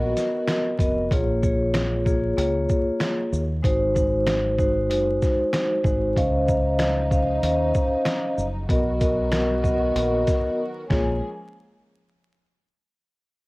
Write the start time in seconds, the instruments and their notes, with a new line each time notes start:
Already playing: fingered electric bass A#1, string section D#3 F#3 B3 F#4 A#4, vibraphone B3 F#4 A#4 D#5
0.17 snare, closed hi-hat, shaker
0.48 snare, closed hi-hat
0.79 fingered electric bass F1, vibraphone B3 F#4 A#4 D#5, kick, closed hi-hat, shaker
1.11 fingered electric bass A#1, vibraphone A#3 F4 G#4 C#5, kick, closed hi-hat
1.42 vibraphone A#3 F4 G#4 C#5, kick, shaker
1.74 snare, closed hi-hat
2.05 vibraphone A#3 F4 G#4 C#5, kick, shaker
2.37 fingered electric bass C#2, vibraphone A#3 F4 G#4 C#5, closed hi-hat
2.69 kick, shaker
3.00 snare, closed hi-hat
3.32 fingered electric bass D#2, shaker
3.62 fingered electric bass G#1, vibraphone G#3 D#4 F#4 C5, kick, closed hi-hat
3.95 vibraphone G#3 D#4 F#4 C5, kick, shaker
4.27 snare, closed hi-hat
4.58 vibraphone G#3 D#4 F#4 C5, kick, shaker
4.90 fingered electric bass F#1, vibraphone G#3 D#4 F#4 C5, closed hi-hat
5.22 kick, snare, shaker
5.53 snare, closed hi-hat
5.83 fingered electric bass G#1, vibraphone G#3 D#4 F#4 C5, kick, shaker
6.16 fingered electric bass C#2, string section C#3 F3 D#4, vibraphone C#4 C5 D#5 F5, kick, closed hi-hat
6.47 vibraphone C#4 C5 D#5 F5, kick, shaker
6.79 snare, closed hi-hat
7.10 vibraphone C#4 C5 D#5 F5, kick, shaker
7.43 fingered electric bass D#2, vibraphone C#4 C5 D#5 F5, closed hi-hat
7.75 kick, shaker
8.05 snare, closed hi-hat
8.38 fingered electric bass F#1, shaker
8.69 fingered electric bass B1, string section D#3 F#3 B3 F#4 A#4, vibraphone B3 F#4 A#4 D#5, kick, closed hi-hat
9.00 vibraphone B3 F#4 A#4 D#5, kick, closed hi-hat, shaker
9.32 snare, closed hi-hat
9.62 vibraphone B3 F#4 A#4 D#5, kick, shaker
9.95 fingered electric bass A#1, vibraphone B3 F#4 A#4 D#5, closed hi-hat
10.27 kick, snare, closed hi-hat, shaker
10.90 fingered electric bass A#1, string section F3 G#3 A#3 C#4 G#4, vibraphone A#3 F4 G#4 C#5, kick, snare